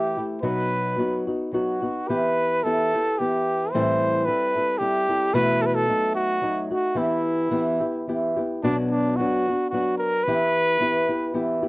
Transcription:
Already playing: nylon-string guitar E3 A3 E4 G4, trumpet G4
0.17 nylon-string guitar A3 E4 G4
0.42 nylon-string guitar B2 F#3 B3 D#4 F#4, trumpet B4
0.98 nylon-string guitar F#3 B3 D#4 F#4
1.27 nylon-string guitar B3 D#4 F#4
1.53 nylon-string guitar F#3 B3 D#4 F#4, trumpet F#4
1.82 nylon-string guitar B3 D#4 F#4
2.08 nylon-string guitar E3 B3 E4 G4, trumpet B4
2.63 nylon-string guitar E3 B3 E4 G4, trumpet A4
2.95 nylon-string guitar B3 E4 G4
3.19 nylon-string guitar E3 B3 E4 G4, trumpet G4
3.71 nylon-string guitar A2 E3 G3 C4 E4 A4, trumpet C5
4.25 nylon-string guitar G3 C4 E4 A4, trumpet B4
4.56 nylon-string guitar G3 C4 E4 A4
4.78 nylon-string guitar G3 C4 E4 A4, trumpet G4
5.09 nylon-string guitar G3 C4 E4 A4
5.34 nylon-string guitar B2 E3 A3 E4 F#4, trumpet B4
5.61 trumpet A4
5.66 trumpet B4
5.75 trumpet A4
5.88 nylon-string guitar F#3 A3 D#4 F#4
6.15 trumpet F#4
6.42 nylon-string guitar F#3 A3 D#4 F#4
6.71 nylon-string guitar A3 D#4 F#4, trumpet F#4
6.95 nylon-string guitar E3 B3 E4 G4, trumpet E4
7.51 nylon-string guitar E3 B3 E4 G4
7.80 nylon-string guitar B3 E4 G4
8.07 nylon-string guitar E3 B3 E4 G4
8.36 nylon-string guitar B3 E4 G4
8.63 nylon-string guitar B2 F#3 B3 D4 F#4, trumpet D4
8.91 trumpet D4
9.16 nylon-string guitar F#3 B3, trumpet F#4
9.20 nylon-string guitar D4 F#4
9.48 nylon-string guitar B3 D4 F#4
9.69 nylon-string guitar F#3 B3, trumpet F#4
9.74 nylon-string guitar D4 F#4
9.98 trumpet A#4
10.24 nylon-string guitar E3 B3, trumpet B4
10.28 nylon-string guitar E4 G4
10.80 nylon-string guitar E3 B3 E4 G4
11.08 nylon-string guitar B3 E4 G4
11.34 nylon-string guitar E3 B3 E4 G4
11.62 nylon-string guitar B3 E4 G4

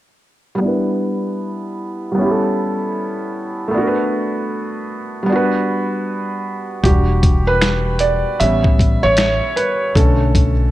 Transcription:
0.55 felt piano G3 B3
0.61 felt piano D4 E4
0.68 felt piano B4
2.12 felt piano G3 B3
2.18 felt piano C#4 E4
2.25 felt piano G4
2.31 felt piano A4
3.68 felt piano A3 B3
3.74 felt piano D4 F#4
3.81 felt piano A#4
3.87 felt piano B4
5.23 felt piano G3 B3
5.29 felt piano D4 F#4
5.36 felt piano B4
6.84 upright bass E1, felt piano G3 D4 F#4 G4, kick, closed hi-hat
7.23 kick, closed hi-hat
7.47 felt piano B4
7.61 finger snap, snare, closed hi-hat
7.99 felt piano D5, closed hi-hat
8.40 upright bass A1, felt piano G3 B3 C#4 E5, closed hi-hat
8.64 kick
8.79 kick, closed hi-hat
9.03 upright bass A1, felt piano C#5
9.17 finger snap, snare, closed hi-hat
9.56 felt piano B4, closed hi-hat
9.95 upright bass B1, felt piano D3 A3 C#4 A4, kick, closed hi-hat
10.35 kick, closed hi-hat

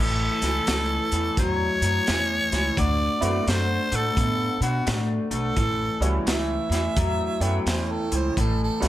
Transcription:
Already playing: upright bass A1, tenor saxophone A4
0.00 clean electric guitar A2 E3
0.41 upright bass C#2, clean electric guitar A2 E3, snare, closed hi-hat
0.67 upright bass C#2, clean electric guitar A2 E3, snare, closed hi-hat
1.12 upright bass E2, clean electric guitar A2 E3, closed hi-hat
1.37 upright bass E2, clean electric guitar A2 F#3, tenor saxophone C#5, kick, closed hi-hat
1.81 upright bass F#2, clean electric guitar A2 F#3, closed hi-hat
2.07 upright bass E2, clean electric guitar A2 E3, snare, closed hi-hat
2.51 upright bass C#2, clean electric guitar A2 E3, snare, closed hi-hat
2.77 upright bass D2, clean electric guitar D3 A3, tenor saxophone D5, kick, closed hi-hat
3.21 upright bass F#2, clean electric guitar D3 A3, upright piano A3 B3 C4 E4 F#4, tenor saxophone D5, closed hi-hat
3.47 upright bass F#2, clean electric guitar D3 A3, tenor saxophone C5, snare, closed hi-hat
3.92 upright bass A2, clean electric guitar D3 A3, tenor saxophone A4, closed hi-hat
4.17 upright bass A2, clean electric guitar D3 B3, kick, closed hi-hat
4.61 upright bass B2, clean electric guitar D3 B3, tenor saxophone F#4, closed hi-hat
4.86 upright bass A2, clean electric guitar D3 A3, snare, closed hi-hat
5.31 upright bass B1, clean electric guitar D3 A3, tenor saxophone A4, closed hi-hat
5.56 upright bass A1, clean electric guitar A2 E3, kick, closed hi-hat
6.00 upright bass C#2, clean electric guitar A2 E3, upright piano G3 B3 C#4 E4 F#4, closed hi-hat
6.26 upright bass C#2, clean electric guitar A2 E3, harmonica E5, snare, closed hi-hat
6.70 upright bass E2, clean electric guitar A2 E3, snare, closed hi-hat
6.96 upright bass E2, clean electric guitar A2 F#3, kick, closed hi-hat
7.40 upright bass F#2, clean electric guitar A2 F#3, upright piano A3 B3 C#4 E4 G5, closed hi-hat
7.66 upright bass E2, clean electric guitar A2 E3, snare, closed hi-hat
7.70 harmonica C5
7.92 harmonica A4
8.12 upright bass C#2, clean electric guitar A2 E3, harmonica C5, closed hi-hat
8.37 upright bass A1, clean electric guitar A2 E3, harmonica A4, kick, closed hi-hat
8.63 harmonica A4
8.80 upright bass C#2, clean electric guitar A2 E3, upright piano G3 B3 C#4 E4 F#4, snare, closed hi-hat

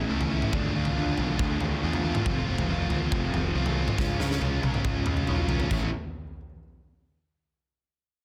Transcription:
Already playing: clean electric guitar A3 C#4, overdriven electric guitar E4
0.09 picked electric bass C#2, overdriven electric guitar E3 A3 C#4 E4
0.21 floor tom
0.31 overdriven electric guitar A3 C#4 E4
0.42 mid tom
0.53 picked electric bass D2, overdriven electric guitar D3 A3 D4 F4, kick, floor tom
0.75 picked electric bass D2, overdriven electric guitar A3 D4 F4
0.85 floor tom
0.96 picked electric bass D2, overdriven electric guitar D3 A3 D4 F4
1.17 picked electric bass B1, clean electric guitar A3 D4 F4, floor tom
1.38 picked electric bass D2, overdriven electric guitar D3 A3 D4 F4, kick
1.60 picked electric bass D2, overdriven electric guitar A3 D4 F4, floor tom
1.81 picked electric bass E2, overdriven electric guitar D3 A3 D4 F4
1.93 floor tom
2.03 overdriven electric guitar A3 D4 F4
2.15 mid tom
2.25 picked electric bass F1, clean electric guitar F2 C3, overdriven electric guitar F3 A3 C4 F4, kick, floor tom
2.47 picked electric bass F1, clean electric guitar F3, overdriven electric guitar A3 C4 F4
2.58 floor tom
2.68 picked electric bass F1, clean electric guitar F2 C3, overdriven electric guitar F3 A3 C4 F4
2.90 picked electric bass D2, clean electric guitar F3 A3 C4 F4, floor tom
3.11 picked electric bass F1, overdriven electric guitar F3 A3 C4 F4, kick
3.33 picked electric bass F1, clean electric guitar F3, overdriven electric guitar A3 C4 F4, floor tom
3.54 picked electric bass C2, overdriven electric guitar F3 A3 C4 F4
3.66 floor tom
3.76 overdriven electric guitar A3 C4 F4
3.88 mid tom
3.98 picked electric bass C#2, overdriven electric guitar C#3 G#3 C#4 F4, clean electric guitar F3, kick, snare
4.19 picked electric bass C#2, overdriven electric guitar G#3 C#4 F4, snare
4.31 snare
4.41 picked electric bass C#2, overdriven electric guitar C#3 G#3 C#4 F4, clean electric guitar F3, high tom
4.62 picked electric bass B1, clean electric guitar G#3 C#4 F4, high tom
4.74 mid tom
4.84 picked electric bass C#2, overdriven electric guitar C#3 G#3 C#4 F4, kick, mid tom
5.06 picked electric bass C#2, overdriven electric guitar G#3 C#4 F4, mid tom
5.17 mid tom
5.27 picked electric bass B1, overdriven electric guitar C#3 G#3 C#4 F4, clean electric guitar F3, mid tom
5.49 overdriven electric guitar G#3 C#4 F4, floor tom
5.60 floor tom
5.71 picked electric bass A1, clean electric guitar A2 E3, overdriven electric guitar A3 C#4 E4 A4, kick, crash

